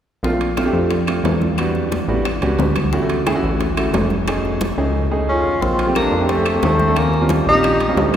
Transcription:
0.23 analog synth bass A#1, grand piano A3 C4 D4 F4, high bongo, high conga
0.32 grand piano A3 C4 D4 F4
0.41 high bongo, high conga, high timbale
0.57 grand piano A3 C4 D4 F4, high bongo, high conga, high timbale, low timbale, claves
0.65 grand piano A3 C4 D4 G4
0.73 analog synth bass F2, high conga
0.91 high bongo, high conga, high timbale
1.07 grand piano A3 C4 D4 F4, high bongo, high conga, high timbale, claves
1.24 analog synth bass E2, high bongo, low bongo, high conga, high timbale, low timbale
1.41 high bongo, high conga
1.58 grand piano G3 B3 D4 F#4, high bongo, high conga, high timbale, claves
1.75 high bongo, high conga
1.92 high bongo, high conga, high timbale, low timbale
2.08 analog synth bass A1, grand piano G3 B3 D4 F#4
2.25 high bongo, high conga, high timbale, claves
2.42 analog synth bass C#2, grand piano G3 B3 C#4 F#4, high bongo, high conga, high timbale
2.58 analog synth bass D2, high bongo, low bongo, high conga, low timbale
2.76 high bongo, high conga, high timbale, claves
2.93 grand piano A3 C#4 E4 F#4, high bongo, high conga
3.02 grand piano A3 C#4 E4 F#4
3.10 high bongo, high conga, high timbale
3.27 grand piano A3 C#4 E4 G#4, high bongo, high conga, high timbale, low timbale, claves
3.35 grand piano A3 C#4 E4 F#4
3.43 analog synth bass A1, high conga
3.60 high bongo, high conga, high timbale
3.77 grand piano A3 C#4 E4 F#4, high bongo, high conga, high timbale, claves
3.93 analog synth bass F1, high bongo, low bongo, high conga, high timbale, low timbale
4.10 high bongo, high conga
4.27 grand piano A3 C#4 D#4 G#4, high bongo, high conga, high timbale, claves
4.44 high bongo, high conga
4.61 high bongo, high conga, high timbale, low timbale
4.78 analog synth bass C#2, grand piano A3 C#4 D#4 G#4
5.11 grand piano A3 C#4 D#4 G#4
5.29 tenor saxophone C#4, flute F4
5.62 analog synth bass A#1, tenor saxophone C4, flute F4, high bongo, high conga
5.79 high bongo, high conga, high timbale
5.87 grand piano A3 C4 D4 G4
5.95 tenor saxophone A#3, flute D4, high bongo, high conga, high timbale, low timbale, claves
6.12 analog synth bass F2, high conga
6.21 grand piano A3 C4 D4 G4
6.29 tenor saxophone A3, flute C4, high bongo, high conga, high timbale
6.46 high bongo, high conga, high timbale, claves
6.54 grand piano A3 C4 D4 G4
6.62 analog synth bass D#2, tenor saxophone A3, flute C4, high bongo, low bongo, high conga, high timbale, low timbale
6.79 high bongo, high conga
6.88 grand piano A3 C4 D4 A4
6.96 tenor saxophone A#3, flute C#4, high bongo, high conga, high timbale, claves
7.13 high bongo, high conga
7.21 grand piano G3 C4 C#4 F4
7.29 high bongo, high conga, high timbale, low timbale
7.46 analog synth bass A#1, tenor saxophone D#4, flute G4
7.55 grand piano G3 C4 C#4 F4
7.63 high bongo, high conga, high timbale, claves
7.80 high bongo, high conga, high timbale
7.88 grand piano G3 C4 C#4 F4
7.96 analog synth bass D2, high bongo, low bongo, high conga, low timbale

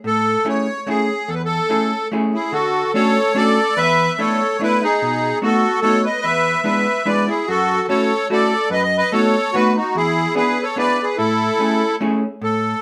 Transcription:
0.04 hollow-body jazz guitar A2, accordion A4
0.45 hollow-body jazz guitar A3 C#4 E4 G#4
0.49 accordion C#5
0.87 hollow-body jazz guitar A3 C#4 E4 G#4, accordion G#4
1.28 hollow-body jazz guitar E2, accordion A4
1.35 accordion B4
1.45 accordion A4
1.69 hollow-body jazz guitar A3 C#4 E4 G#4
2.12 hollow-body jazz guitar A3 C#4 E4 G#4
2.34 accordion E4 G#4
2.52 hollow-body jazz guitar D3, accordion F#4 A4
2.94 hollow-body jazz guitar A3 C#4 D4 F#4, accordion A4 C#5
3.35 hollow-body jazz guitar A3 C#4 D4 F#4, accordion A4 D5
3.77 hollow-body jazz guitar E2, accordion B4 E5
4.18 hollow-body jazz guitar A3 B3 D4 E4, accordion A4 C#5
4.59 hollow-body jazz guitar A3 B3 D4 E4, accordion E4
4.64 accordion B4
4.83 accordion D#4 G#4
5.02 hollow-body jazz guitar B2
5.42 hollow-body jazz guitar A3 B3 D#4 F#4, accordion F#4 A4
5.81 hollow-body jazz guitar A3 B3 D#4 F#4, accordion A4 C#5
6.04 accordion B4 D#5
6.21 hollow-body jazz guitar E2, accordion B4 E5
6.64 hollow-body jazz guitar G#3 B3 D4 E4, accordion B4 E5
7.05 hollow-body jazz guitar G#3 B3 D4 E4, accordion B4 D5
7.27 accordion E4 G#4
7.48 hollow-body jazz guitar F#2, accordion F#4 A4
7.88 hollow-body jazz guitar A3 C#4 E4 F#4, accordion A4 C#5
8.30 hollow-body jazz guitar A3 C#4 E4 F#4, accordion A4 D5
8.70 hollow-body jazz guitar F#2, accordion B4 D#5
8.83 accordion D#5
8.97 accordion B4 D#5
9.12 hollow-body jazz guitar A3 B3 D#4 F#4, accordion A4 C#5
9.53 hollow-body jazz guitar A3 B3 D#4 F#4, accordion F#4 B4
9.76 accordion D#4 F#4
9.95 hollow-body jazz guitar E2, accordion E4 G#4
10.35 hollow-body jazz guitar B3 D4 E4 G#4, accordion G#4 B4
10.62 accordion A4 C#5
10.76 hollow-body jazz guitar B3 D4 E4 G#4, accordion B4 D5
11.03 accordion G#4 B4
11.17 hollow-body jazz guitar A2, accordion E4 A4
11.60 hollow-body jazz guitar A3 C#4 E4 G#4
12.01 hollow-body jazz guitar A3 C#4 E4 G#4
12.41 hollow-body jazz guitar A2, accordion A4

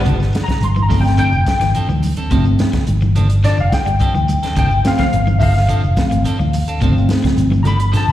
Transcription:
0.05 fingered electric bass G1, clean electric guitar C3 F3 D4 A4, muted clean electric guitar stroke, kick, closed hi-hat, low conga, shekere
0.19 muted clean electric guitar stroke, snare, shekere
0.33 muted clean electric guitar stroke, snare, closed hi-hat, high conga, shekere
0.44 tine electric piano A#5, shekere
0.48 clean electric guitar F3, kick, snare, closed hi-hat, high conga
0.60 fingered electric bass G1, tine electric piano C6, closed hi-hat, high conga, shekere
0.76 clean electric guitar E3, high conga, shekere
0.83 tine electric piano A#5
0.88 tine electric piano F3 A3 C4, clean electric guitar F3 C4 D4 A4, kick, open hi-hat, low conga, shekere
1.01 tine electric piano G5, muted clean electric guitar stroke, shekere
1.07 snare
1.17 clean electric guitar D3 F3 C4 D4 A4, tine electric piano G5, closed hi-hat, shekere
1.31 fingered electric bass F1, muted clean electric guitar stroke, shekere
1.46 muted clean electric guitar stroke, kick, snare, closed hi-hat, high conga, shekere
1.60 fingered electric bass G1, clean electric guitar E3, muted clean electric guitar stroke, snare, closed hi-hat, shekere
1.74 clean electric guitar F3 C4 D4 A4, closed hi-hat, shekere
1.89 fingered electric bass D2, clean electric guitar E3, muted clean electric guitar stroke, high conga, shekere
2.03 muted clean electric guitar stroke, open hi-hat, high conga, shekere
2.17 clean electric guitar C4 D4 A4, muted fingered electric bass stroke, closed hi-hat, shekere
2.31 fingered electric bass G1, clean electric guitar C3 F3 C4 D4 A4, tine electric piano F3 A3 C4, kick, closed hi-hat, low conga, shekere
2.45 muted clean electric guitar stroke, shekere
2.59 muted clean electric guitar stroke, snare, closed hi-hat, high conga, shekere
2.72 clean electric guitar F3, kick, snare, closed hi-hat, low conga, shekere
2.87 fingered electric bass G1, closed hi-hat, high conga, shekere
3.01 clean electric guitar E3, high conga, shekere
3.15 clean electric guitar F3 C4 D4 A4, closed hi-hat, low conga, shekere
3.29 muted clean electric guitar stroke, closed hi-hat, shekere
3.43 clean electric guitar D3 F3 C4 D4 A4, tine electric piano D5, snare, closed hi-hat, shekere
3.58 fingered electric bass F1, tine electric piano F5, muted clean electric guitar stroke, shekere
3.69 tine electric piano F#5, muted clean electric guitar stroke, kick, closed hi-hat, high conga, shekere
3.74 tine electric piano G5, snare
3.86 fingered electric bass G1, clean electric guitar G3, muted clean electric guitar stroke, closed hi-hat, shekere
3.99 clean electric guitar F3 C4 D4 A4, kick, closed hi-hat, shekere
4.14 fingered electric bass D2, clean electric guitar E3, muted clean electric guitar stroke, high conga, shekere
4.28 muted clean electric guitar stroke, closed hi-hat, high conga, shekere
4.43 clean electric guitar C4 D4 A4, muted fingered electric bass stroke, snare, closed hi-hat, shekere
4.56 fingered electric bass G1, clean electric guitar C3 F3 C4 D4 A4, tine electric piano G5, kick, closed hi-hat, low conga, shekere
4.70 muted clean electric guitar stroke, shekere
4.84 tine electric piano F3 A3 C4 F5, muted clean electric guitar stroke, snare, closed hi-hat, high conga, shekere
4.99 clean electric guitar F3, tine electric piano F5, kick, snare, closed hi-hat, low conga, shekere
5.13 fingered electric bass G1, closed hi-hat, shekere
5.27 clean electric guitar E3, high conga, shekere
5.39 clean electric guitar F3 C4 A4, tine electric piano E5 F5, muted clean electric guitar stroke, kick, open hi-hat, low conga, shekere
5.54 muted clean electric guitar stroke, snare, shekere
5.69 clean electric guitar D3 F3 C4 D4 A4, closed hi-hat, shekere
5.83 fingered electric bass F1, muted clean electric guitar stroke, shekere
5.97 tine electric piano F3 A3 C4, muted clean electric guitar stroke, kick, snare, closed hi-hat, high conga, shekere
6.11 fingered electric bass G1, clean electric guitar E3, muted clean electric guitar stroke, closed hi-hat, shekere
6.25 clean electric guitar F3 C4 D4 A4, closed hi-hat, shekere
6.39 fingered electric bass D2, clean electric guitar E3, muted clean electric guitar stroke, high conga, shekere
6.53 muted clean electric guitar stroke, open hi-hat, shekere
6.68 clean electric guitar C4 D4 A4, muted fingered electric bass stroke, closed hi-hat, shekere
6.81 fingered electric bass G1, clean electric guitar C3 F3 C4 D4 A4, tine electric piano F3 A3 C4, kick, closed hi-hat, low conga, shekere
6.95 muted clean electric guitar stroke, shekere
7.09 muted clean electric guitar stroke, snare, closed hi-hat, high conga, shekere
7.24 clean electric guitar F3, kick, snare, closed hi-hat, high conga, low conga, shekere
7.37 fingered electric bass G1, closed hi-hat, high conga, shekere
7.51 clean electric guitar E3, high conga, shekere
7.63 clean electric guitar F3 D4 A4, tine electric piano A#5, muted clean electric guitar stroke, closed hi-hat, low conga, shekere
7.67 tine electric piano B5
7.79 muted clean electric guitar stroke, closed hi-hat, shekere
7.92 clean electric guitar D3 F3 C4 A4, muted clean electric guitar stroke, snare, closed hi-hat, shekere
7.97 tine electric piano A5
8.07 fingered electric bass F1, muted clean electric guitar stroke, shekere

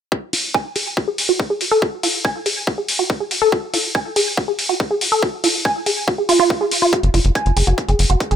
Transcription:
0.12 synth arpeggio sound F#4, kick
0.33 synth arpeggio sound F4, open hi-hat
0.54 synth arpeggio sound G#5, kick
0.76 synth arpeggio sound G#4, open hi-hat
0.97 synth arpeggio sound F#4, kick
1.08 synth arpeggio sound G#4
1.18 open hi-hat
1.29 synth arpeggio sound F#4
1.40 kick
1.50 synth arpeggio sound G#4
1.61 open hi-hat
1.71 synth arpeggio sound A4
1.82 synth arpeggio sound F#4, kick
2.03 synth arpeggio sound F4, open hi-hat
2.25 synth arpeggio sound G#5, kick
2.46 synth arpeggio sound G#4, open hi-hat
2.67 synth arpeggio sound F#4, kick
2.78 synth arpeggio sound G#4
2.88 open hi-hat
2.99 synth arpeggio sound F#4
3.10 kick
3.20 synth arpeggio sound G#4
3.31 open hi-hat
3.42 synth arpeggio sound A4
3.52 synth arpeggio sound F#4, kick
3.74 synth arpeggio sound F4, open hi-hat
3.95 synth arpeggio sound G#5, kick
4.16 synth arpeggio sound G#4, open hi-hat
4.37 synth arpeggio sound F#4, kick
4.48 synth arpeggio sound G#4
4.59 open hi-hat
4.69 synth arpeggio sound F#4
4.80 kick
4.91 synth arpeggio sound G#4
5.01 open hi-hat
5.12 synth arpeggio sound A4
5.23 synth arpeggio sound F#4, kick
5.44 synth arpeggio sound F4, open hi-hat
5.65 synth arpeggio sound G#5, kick
5.86 synth arpeggio sound G#4, open hi-hat
6.08 synth arpeggio sound F#4, kick
6.18 synth arpeggio sound G#4
6.29 synth arpeggio sound F4, open hi-hat
6.40 synth arpeggio sound F4
6.50 kick
6.61 synth arpeggio sound G#4
6.71 open hi-hat
6.82 synth arpeggio sound F4
6.93 synth arpeggio sound F#4, kick, closed hi-hat
7.03 analog synth bass F#1, closed hi-hat
7.14 analog synth bass F#1, synth arpeggio sound F4, open hi-hat
7.25 analog synth bass F#1, closed hi-hat
7.35 synth arpeggio sound G#5, kick, closed hi-hat
7.46 analog synth bass F#1, closed hi-hat
7.57 analog synth bass F#1, synth arpeggio sound G#4, open hi-hat
7.67 analog synth bass F#1, synth arpeggio sound F#4, closed hi-hat
7.78 kick, closed hi-hat
7.88 analog synth bass F#1, synth arpeggio sound G#4, closed hi-hat
7.99 analog synth bass F#1, open hi-hat
8.10 analog synth bass F#1, synth arpeggio sound F#4, closed hi-hat
8.20 kick, closed hi-hat
8.31 analog synth bass F#1, synth arpeggio sound G#4, closed hi-hat

